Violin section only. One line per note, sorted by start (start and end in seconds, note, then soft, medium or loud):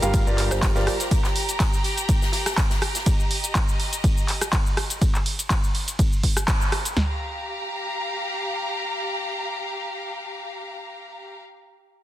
0.00 4.98 G4 medium
0.00 1.07 F5 medium
0.00 4.97 A#5 medium
1.11 3.04 G5 medium
3.06 4.99 D#5 medium
6.96 11.39 G4 medium
6.96 11.39 F5 medium
6.96 11.39 A#5 medium